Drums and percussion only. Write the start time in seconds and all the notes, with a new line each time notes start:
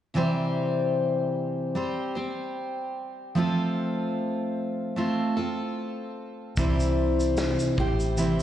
6.57 kick, shaker
6.80 shaker
7.20 shaker
7.37 snare, shaker
7.59 shaker
7.78 kick
8.00 shaker
8.18 shaker